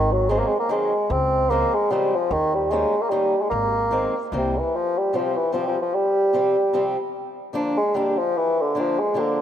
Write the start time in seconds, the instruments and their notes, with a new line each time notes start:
Already playing: upright bass G#1, bassoon D#3
0.12 bassoon F#3
0.29 steel-string acoustic guitar D#3 F#3 G#3 C4, bassoon G#3
0.38 bassoon A#3
0.47 bassoon G#3
0.60 bassoon A#3
0.69 steel-string acoustic guitar D#3 F#3 G#3 C4, bassoon G#3
1.10 upright bass C#2, bassoon C4
1.50 steel-string acoustic guitar C#3 F3 G#3 C4, bassoon A#3
1.74 bassoon G#3
1.91 steel-string acoustic guitar C#3 F3 G#3 C4, bassoon G3
2.15 bassoon F3
2.31 upright bass D#2, bassoon D#3
2.54 bassoon G3
2.71 steel-string acoustic guitar D#3 G3 A#3 C#4, bassoon G#3
3.01 bassoon A#3
3.10 steel-string acoustic guitar D#3 G3 A#3 C#4, bassoon G3
3.41 bassoon G#3
3.50 upright bass G#1, bassoon A#3
3.91 steel-string acoustic guitar D#3 G#3 A#3 C4
4.32 upright bass C2, steel-string acoustic guitar E3 G3 A#3 C4
4.37 bassoon C3
4.58 bassoon E3
4.76 bassoon F3
4.98 bassoon G3
5.13 steel-string acoustic guitar C3 F3 G3 C4, bassoon F3
5.36 bassoon E3
5.52 steel-string acoustic guitar C3 F3 G3 C4, bassoon F3
5.67 bassoon F3
5.82 bassoon F3
5.94 bassoon G3
6.33 steel-string acoustic guitar C3 F3 G3 C4
6.73 steel-string acoustic guitar C3 F3 G3 C4
7.53 steel-string acoustic guitar D3 F3 A#3 D4
7.77 bassoon G#3
7.94 steel-string acoustic guitar D3 F3 A#3 D4, bassoon G3
8.18 bassoon F3
8.37 bassoon E3
8.61 bassoon D3
8.75 steel-string acoustic guitar D3 F3 A#3 D4
8.80 bassoon F3
8.99 bassoon G#3
9.14 steel-string acoustic guitar D3 F3 A#3 D4
9.19 bassoon D3